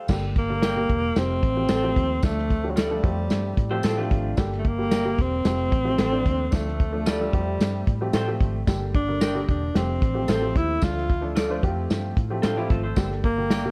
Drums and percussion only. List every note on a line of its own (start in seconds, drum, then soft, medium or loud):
0.08 kick loud
0.08 snare loud
0.08 crash loud
0.08 tambourine medium
0.36 kick medium
0.36 closed hi-hat medium
0.62 snare loud
0.62 closed hi-hat loud
0.62 tambourine loud
0.89 kick medium
0.89 closed hi-hat medium
1.16 snare loud
1.16 closed hi-hat loud
1.16 tambourine medium
1.43 kick loud
1.43 closed hi-hat medium
1.69 snare loud
1.69 closed hi-hat loud
1.69 tambourine medium
1.96 kick medium
1.96 closed hi-hat medium
2.23 kick loud
2.23 snare loud
2.23 closed hi-hat medium
2.23 tambourine medium
2.38 snare soft
2.50 kick medium
2.50 closed hi-hat medium
2.77 snare loud
2.77 closed hi-hat loud
2.77 tambourine loud
3.04 kick loud
3.04 closed hi-hat medium
3.30 snare loud
3.30 closed hi-hat loud
3.30 tambourine medium
3.57 kick medium
3.57 closed hi-hat medium
3.83 snare loud
3.83 closed hi-hat loud
3.83 tambourine loud
4.11 kick loud
4.11 closed hi-hat medium
4.37 kick loud
4.37 snare loud
4.37 closed hi-hat loud
4.37 tambourine medium
4.52 snare soft
4.65 kick medium
4.65 closed hi-hat medium
4.91 snare loud
4.91 closed hi-hat loud
4.91 tambourine loud
5.18 kick medium
5.18 closed hi-hat medium
5.45 snare loud
5.45 closed hi-hat loud
5.45 tambourine medium
5.72 kick loud
5.72 closed hi-hat medium
5.98 snare loud
5.98 closed hi-hat loud
5.98 tambourine medium
6.26 kick medium
6.26 closed hi-hat medium
6.52 kick loud
6.52 snare loud
6.52 closed hi-hat medium
6.52 tambourine medium
6.68 snare soft
6.80 kick medium
6.80 closed hi-hat medium
7.06 snare loud
7.06 closed hi-hat loud
7.06 tambourine loud
7.33 kick loud
7.33 closed hi-hat medium
7.60 snare loud
7.60 closed hi-hat medium
7.60 tambourine medium
7.87 kick medium
7.87 closed hi-hat medium
8.13 snare loud
8.13 closed hi-hat loud
8.13 tambourine medium
8.40 kick medium
8.40 closed hi-hat medium
8.67 kick loud
8.67 snare loud
8.67 closed hi-hat loud
8.67 tambourine medium
8.94 kick loud
8.94 closed hi-hat medium
9.21 snare loud
9.21 closed hi-hat loud
9.21 tambourine loud
9.48 kick medium
9.48 closed hi-hat medium
9.75 snare loud
9.75 closed hi-hat loud
9.75 tambourine medium
10.02 kick medium
10.02 closed hi-hat medium
10.28 snare loud
10.28 closed hi-hat loud
10.28 tambourine medium
10.56 kick loud
10.56 closed hi-hat medium
10.82 kick loud
10.82 snare loud
10.82 closed hi-hat medium
10.82 tambourine medium
10.98 snare soft
11.10 kick medium
11.10 closed hi-hat medium
11.37 snare loud
11.37 closed hi-hat loud
11.37 tambourine loud
11.63 kick loud
11.63 closed hi-hat medium
11.90 snare loud
11.90 closed hi-hat medium
11.90 tambourine medium
12.17 kick loud
12.17 closed hi-hat medium
12.43 snare loud
12.43 closed hi-hat loud
12.43 tambourine medium
12.70 kick loud
12.70 closed hi-hat medium
12.96 kick loud
12.96 snare loud
12.96 closed hi-hat medium
12.96 tambourine medium
13.11 snare soft
13.24 kick medium
13.24 closed hi-hat medium
13.50 snare loud
13.50 closed hi-hat loud
13.50 tambourine loud